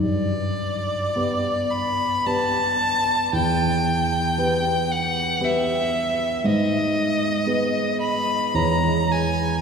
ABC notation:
X:1
M:3/4
L:1/8
Q:1/4=56
K:G
V:1 name="Violin"
d3 b a2 | g3 f e2 | [K:G#m] d3 b a g |]
V:2 name="Grand piano"
G,,2 [B,GB]2 [B,GB]2 | E,,2 [B,GB]2 [B,GB]2 | [K:G#m] G,,2 [B,GB]2 [E,,B,Gc]2 |]